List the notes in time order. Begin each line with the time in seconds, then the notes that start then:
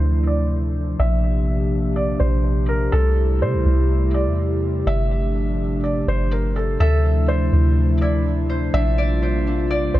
Already playing: D2 C3 F3 A3 D4 E4 C5
0.27 D5
1.00 A#1 C3 A#3 D4 G4 E5
1.96 D5
2.20 A#1 C5
2.69 A#4
2.92 C2 C3 G3 A3 E4 A4
3.41 C3 C5
3.54 C2
3.66 C2
4.14 D5
4.26 E2
4.87 G1 F3 A3 D4 E5
5.84 D5
6.08 G1 C5
6.32 A#4
6.56 A4
6.80 D2 C3 F3 A3 D4 E4 A4 E5
7.28 C5
7.53 D2
8.01 E4 D5
8.50 C5
8.74 A#1 C3 G3 A#3 D4 F4 E5
8.98 D5
9.22 C5
9.47 D4
9.70 D5
9.94 A#1 C5